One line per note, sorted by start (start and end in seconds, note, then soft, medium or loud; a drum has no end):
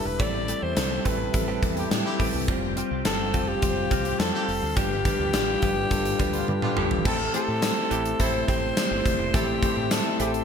0.00 0.19 G3 loud
0.00 0.22 D4 medium
0.00 0.20 E4 medium
0.00 0.18 G4 medium
0.00 0.22 G4 loud
0.00 0.22 B4 medium
0.00 2.45 E5 medium
0.00 0.18 B5 medium
0.00 0.18 D6 medium
0.05 0.16 E1 medium
0.05 0.21 B4 loud
0.05 muted clean electric guitar stroke soft
0.19 0.52 A1 medium
0.19 0.39 E3 medium
0.19 0.37 G3 medium
0.19 0.34 A3 medium
0.19 0.37 C4 medium
0.19 0.33 C4 medium
0.19 0.38 E4 medium
0.19 7.01 G4 medium
0.19 0.33 G4 medium
0.19 0.38 A4 medium
0.19 0.64 D5 loud
0.19 4.73 G5 loud
0.19 2.46 A5 medium
0.19 kick loud
0.19 closed hi-hat loud
0.34 muted clean electric guitar stroke soft
0.48 0.63 E3 medium
0.48 0.66 G3 medium
0.48 0.62 A3 medium
0.48 0.66 C4 medium
0.48 0.62 C4 medium
0.48 0.66 E4 medium
0.48 0.61 G4 medium
0.48 0.66 A4 medium
0.48 closed hi-hat medium
0.62 0.73 E2 medium
0.62 0.76 E3 medium
0.62 0.76 A3 medium
0.62 0.76 C4 medium
0.62 0.76 G4 medium
0.62 1.07 C5 loud
0.76 0.98 C2 loud
0.76 0.94 G3 medium
0.76 0.95 C4 medium
0.76 0.95 E4 medium
0.76 0.95 A4 medium
0.76 muted clean electric guitar stroke soft
0.76 snare loud
0.76 closed hi-hat loud
0.91 muted clean electric guitar stroke soft
1.05 1.27 A1 medium
1.05 1.25 E3 medium
1.05 1.23 G3 medium
1.05 1.19 A3 medium
1.05 1.23 C4 medium
1.05 1.19 C4 medium
1.05 1.23 E4 medium
1.05 1.18 G4 medium
1.05 1.23 A4 medium
1.05 1.91 B4 medium
1.05 kick medium
1.05 closed hi-hat medium
1.19 muted clean electric guitar stroke soft
1.33 1.55 A1 loud
1.33 1.52 G3 loud
1.33 1.52 C4 loud
1.33 1.52 E4 medium
1.33 1.52 A4 loud
1.33 muted clean electric guitar stroke soft
1.33 kick medium
1.33 closed hi-hat medium
1.48 1.61 E3 medium
1.48 1.62 A3 medium
1.48 1.62 C4 medium
1.48 1.62 G4 medium
1.62 1.84 E2 medium
1.62 1.80 G3 medium
1.62 1.80 C4 medium
1.62 1.81 E4 medium
1.62 1.81 A4 medium
1.62 muted clean electric guitar stroke soft
1.62 kick medium
1.62 closed hi-hat medium
1.77 1.89 C4 medium
1.77 1.89 E4 medium
1.77 1.89 G4 medium
1.77 muted clean electric guitar stroke soft
1.77 closed hi-hat soft
1.91 2.02 A2 medium
1.91 2.09 G3 medium
1.91 2.09 C4 medium
1.91 2.09 E4 medium
1.91 2.09 G4 medium
1.91 muted clean electric guitar stroke soft
1.91 snare loud
1.91 closed hi-hat medium
2.05 2.24 C4 medium
2.05 2.24 E4 medium
2.05 2.24 G4 loud
2.05 muted clean electric guitar stroke medium
2.19 2.30 A1 medium
2.19 2.34 E3 medium
2.19 2.37 G3 medium
2.19 2.34 A3 medium
2.19 2.37 C4 medium
2.19 2.33 C4 medium
2.19 2.38 E4 medium
2.19 2.33 G4 medium
2.19 2.38 B4 medium
2.19 kick medium
2.19 open hi-hat medium
2.34 2.45 C2 medium
2.34 2.48 E3 medium
2.34 2.48 A3 medium
2.34 2.47 C4 medium
2.34 2.48 G4 medium
2.48 2.80 F1 medium
2.48 2.66 G3 loud
2.48 2.68 G3 medium
2.48 2.66 C4 loud
2.48 2.62 C4 medium
2.48 2.66 F4 loud
2.48 2.62 F4 medium
2.48 2.61 G4 medium
2.48 4.75 C5 medium
2.48 2.66 C5 loud
2.48 7.01 F5 medium
2.48 kick loud
2.48 closed hi-hat loud
2.62 muted clean electric guitar stroke soft
2.76 2.94 G3 medium
2.76 2.91 G3 medium
2.76 2.95 C4 medium
2.76 2.91 C4 medium
2.76 2.95 F4 medium
2.76 2.90 F4 medium
2.76 2.90 G4 medium
2.76 2.95 C5 loud
2.76 closed hi-hat medium
2.91 3.02 C2 medium
2.91 3.04 G3 medium
2.91 3.04 C4 medium
2.91 3.05 F4 medium
2.91 3.05 G4 medium
3.05 3.34 G1 medium
3.05 3.23 G3 medium
3.05 3.23 C4 medium
3.05 3.23 F4 medium
3.05 3.50 A4 loud
3.05 3.24 C5 medium
3.05 muted clean electric guitar stroke soft
3.05 snare loud
3.05 closed hi-hat loud
3.19 muted clean electric guitar stroke soft
3.34 3.56 F1 medium
3.34 3.52 G3 medium
3.34 3.54 G3 medium
3.34 3.52 C4 medium
3.34 3.48 C4 medium
3.34 3.52 F4 medium
3.34 3.48 F4 medium
3.34 3.47 G4 medium
3.34 3.52 C5 medium
3.34 kick medium
3.34 closed hi-hat medium
3.48 4.21 G4 loud
3.48 muted clean electric guitar stroke soft
3.62 3.84 F1 loud
3.62 3.80 G3 loud
3.62 3.80 C4 loud
3.62 3.81 F4 medium
3.62 3.81 C5 loud
3.62 muted clean electric guitar stroke soft
3.62 kick medium
3.62 closed hi-hat medium
3.77 muted clean electric guitar stroke soft
3.90 4.13 C2 medium
3.90 4.09 G3 medium
3.90 4.11 G3 medium
3.90 4.09 C4 medium
3.90 4.05 C4 medium
3.90 4.09 F4 medium
3.90 4.05 F4 medium
3.90 4.04 G4 loud
3.90 4.09 C5 medium
3.90 kick medium
3.90 closed hi-hat medium
4.05 4.18 C4 medium
4.05 4.18 G4 medium
4.05 muted clean electric guitar stroke medium
4.05 closed hi-hat soft
4.19 4.30 F2 loud
4.19 4.37 G3 medium
4.19 4.37 C4 medium
4.19 4.38 F4 medium
4.19 4.78 A4 loud
4.19 4.38 C5 medium
4.19 muted clean electric guitar stroke soft
4.19 snare loud
4.19 closed hi-hat medium
4.34 4.52 C4 medium
4.34 4.52 G4 loud
4.34 muted clean electric guitar stroke soft
4.48 4.59 F1 medium
4.48 4.66 G3 medium
4.48 4.66 C4 medium
4.48 4.66 F4 medium
4.48 4.66 C5 medium
4.48 open hi-hat medium
4.62 4.73 D2 medium
4.62 muted clean electric guitar stroke soft
4.76 5.09 G1 loud
4.76 4.96 F3 medium
4.76 4.94 G3 medium
4.76 4.91 B3 medium
4.76 4.94 D4 medium
4.76 4.90 D4 medium
4.76 4.95 F4 medium
4.76 6.48 G4 loud
4.76 4.90 G4 medium
4.76 4.95 B4 loud
4.76 7.03 D5 medium
4.76 7.03 B5 medium
4.76 kick loud
4.76 closed hi-hat medium
4.91 muted clean electric guitar stroke soft
5.05 5.19 F3 medium
5.05 5.23 G3 medium
5.05 5.19 B3 medium
5.05 5.23 D4 medium
5.05 5.19 D4 medium
5.05 5.23 F4 medium
5.05 5.18 G4 medium
5.05 5.24 B4 medium
5.05 kick loud
5.05 closed hi-hat medium
5.19 5.30 D2 medium
5.19 5.32 F3 medium
5.19 5.33 B3 medium
5.19 5.33 D4 medium
5.19 5.33 G4 medium
5.33 5.55 A1 medium
5.33 5.51 G3 medium
5.33 5.52 D4 medium
5.33 5.52 F4 medium
5.33 5.52 G4 medium
5.33 muted clean electric guitar stroke soft
5.33 snare loud
5.33 closed hi-hat loud
5.48 muted clean electric guitar stroke soft
5.62 5.84 G1 medium
5.62 5.82 F3 medium
5.62 5.80 G3 medium
5.62 5.76 B3 medium
5.62 5.80 D4 medium
5.62 5.76 D4 medium
5.62 5.80 F4 medium
5.62 5.75 G4 medium
5.62 5.81 B4 loud
5.62 kick medium
5.62 closed hi-hat medium
5.77 muted clean electric guitar stroke soft
5.90 6.13 G1 medium
5.90 6.09 G3 loud
5.90 6.09 D4 loud
5.90 6.09 F4 loud
5.90 6.09 A4 loud
5.90 kick medium
5.90 closed hi-hat medium
6.05 muted clean electric guitar stroke soft
6.05 closed hi-hat soft
6.19 6.41 D2 medium
6.19 6.39 F3 medium
6.19 6.37 G3 medium
6.19 6.34 B3 medium
6.19 6.37 D4 medium
6.19 6.33 D4 loud
6.19 6.37 F4 medium
6.19 6.33 G4 loud
6.19 6.38 B4 medium
6.19 kick medium
6.19 closed hi-hat medium
6.33 6.46 B3 medium
6.33 6.46 D4 medium
6.33 6.46 F4 loud
6.33 muted clean electric guitar stroke soft
6.33 closed hi-hat medium
6.47 6.59 G2 loud
6.47 6.66 G3 medium
6.47 6.66 D4 medium
6.47 6.66 F4 medium
6.47 7.08 G4 medium
6.47 6.66 B4 medium
6.47 high tom medium
6.62 6.81 B3 medium
6.62 6.81 D4 medium
6.62 6.81 F4 loud
6.62 muted clean electric guitar stroke medium
6.62 mid tom medium
6.76 6.87 G1 medium
6.76 6.96 F3 medium
6.76 6.94 G3 medium
6.76 6.91 B3 medium
6.76 6.94 D4 medium
6.76 6.90 D4 medium
6.76 6.95 F4 medium
6.76 6.90 G4 loud
6.76 6.95 A4 medium
6.76 mid tom medium
6.91 7.02 E1 medium
6.91 muted clean electric guitar stroke medium
6.91 floor tom medium
7.04 7.27 A1 loud
7.04 7.25 E3 medium
7.04 7.23 A3 medium
7.04 7.19 A3 medium
7.04 7.23 C4 medium
7.04 7.17 C4 loud
7.04 7.19 C4 medium
7.04 7.23 E4 medium
7.04 7.17 E4 loud
7.04 7.23 G4 medium
7.04 7.18 G4 medium
7.04 10.44 A4 medium
7.04 7.17 A4 loud
7.04 7.34 A4 loud
7.04 7.23 C5 loud
7.04 10.44 E5 medium
7.04 10.44 G5 medium
7.04 10.44 C6 medium
7.04 kick loud
7.04 crash loud
7.19 muted clean electric guitar stroke soft
7.33 7.48 E3 medium
7.33 7.51 A3 loud
7.33 7.47 A3 medium
7.33 7.52 C4 medium
7.33 7.47 C4 medium
7.33 7.52 E4 medium
7.33 7.45 G4 medium
7.33 7.52 G4 medium
7.33 7.47 G4 medium
7.33 7.45 A4 medium
7.33 8.22 A4 loud
7.33 7.45 C5 medium
7.33 7.52 C5 loud
7.33 closed hi-hat medium
7.48 7.70 A2 medium
7.48 7.61 E3 medium
7.48 7.61 A3 medium
7.48 7.62 C4 medium
7.48 7.62 G4 medium
7.62 7.80 A3 medium
7.62 7.80 C4 medium
7.62 7.80 E4 medium
7.62 7.80 G4 medium
7.62 7.80 C5 medium
7.62 muted clean electric guitar stroke soft
7.62 snare loud
7.62 closed hi-hat loud
7.62 tambourine medium
7.76 muted clean electric guitar stroke soft
7.90 8.13 A1 medium
7.90 8.11 E3 medium
7.90 8.09 A3 medium
7.90 8.05 A3 medium
7.90 8.09 C4 medium
7.90 8.03 C4 medium
7.90 8.04 C4 medium
7.90 8.03 E4 medium
7.90 8.09 E4 medium
7.90 8.03 G4 loud
7.90 8.09 G4 medium
7.90 8.04 G4 medium
7.90 8.09 C5 medium
7.90 closed hi-hat medium
8.05 muted clean electric guitar stroke soft
8.05 closed hi-hat soft
8.19 8.41 A1 loud
8.19 8.37 A3 medium
8.19 8.37 C4 medium
8.19 8.43 C4 medium
8.19 8.43 E4 medium
8.19 8.38 E4 medium
8.19 8.38 G4 medium
8.19 8.42 A4 loud
8.19 8.38 C5 medium
8.19 8.48 C5 loud
8.19 muted clean electric guitar stroke soft
8.19 kick medium
8.19 closed hi-hat medium
8.33 muted clean electric guitar stroke soft
8.48 8.70 A1 medium
8.48 8.68 E3 medium
8.48 8.66 A3 medium
8.48 8.62 A3 medium
8.48 8.66 C4 medium
8.48 8.62 C4 medium
8.48 8.66 E4 medium
8.48 8.66 G4 medium
8.48 8.61 G4 loud
8.48 8.66 A4 medium
8.48 9.37 C5 loud
8.48 kick medium
8.48 closed hi-hat medium
8.62 muted clean electric guitar stroke medium
8.77 8.95 A3 medium
8.77 8.95 C4 medium
8.77 8.95 E4 medium
8.77 8.95 G4 medium
8.77 8.95 D5 loud
8.77 snare loud
8.77 closed hi-hat medium
8.77 tambourine medium
8.91 9.02 G1 medium
8.91 muted clean electric guitar stroke soft
9.05 9.16 F1 medium
9.05 9.23 A3 medium
9.05 9.23 C4 medium
9.05 9.23 E4 medium
9.05 9.23 G4 medium
9.05 9.24 C5 medium
9.05 kick medium
9.05 closed hi-hat medium
9.19 9.31 E1 medium
9.19 muted clean electric guitar stroke soft
9.34 9.55 A1 loud
9.34 9.54 E3 medium
9.34 9.52 A3 medium
9.34 9.48 A3 medium
9.34 9.52 C4 medium
9.34 9.45 C4 loud
9.34 9.47 C4 medium
9.34 9.45 E4 loud
9.34 9.52 E4 medium
9.34 9.52 G4 medium
9.34 9.47 G4 medium
9.34 9.94 G4 loud
9.34 9.45 A4 loud
9.34 9.52 C5 loud
9.34 kick loud
9.34 closed hi-hat loud
9.48 muted clean electric guitar stroke soft
9.62 9.77 E3 medium
9.62 9.80 A3 loud
9.62 9.76 A3 medium
9.62 9.80 C4 loud
9.62 9.76 C4 medium
9.62 9.80 E4 medium
9.62 9.74 G4 medium
9.62 9.81 G4 medium
9.62 9.75 G4 medium
9.62 9.74 A4 medium
9.62 9.74 C5 medium
9.62 9.81 C5 loud
9.62 kick loud
9.62 closed hi-hat medium
9.77 9.98 A2 loud
9.77 9.90 E3 medium
9.77 9.90 A3 medium
9.77 9.91 C4 medium
9.77 9.91 G4 medium
9.91 10.09 A3 medium
9.91 10.09 C4 medium
9.91 10.09 E4 medium
9.91 10.09 G4 medium
9.91 10.20 A4 medium
9.91 10.09 C5 medium
9.91 muted clean electric guitar stroke soft
9.91 snare loud
9.91 closed hi-hat loud
9.91 tambourine medium
10.05 muted clean electric guitar stroke medium
10.19 10.41 A1 medium
10.19 10.39 E3 medium
10.19 10.37 A3 medium
10.19 10.34 A3 medium
10.19 10.37 C4 medium
10.19 10.31 C4 medium
10.19 10.33 C4 medium
10.19 10.31 E4 medium
10.19 10.38 E4 medium
10.19 10.31 G4 loud
10.19 10.38 G4 medium
10.19 10.33 G4 medium
10.19 10.44 A4 medium
10.19 10.38 C5 medium
10.19 closed hi-hat medium
10.34 muted clean electric guitar stroke soft
10.34 closed hi-hat soft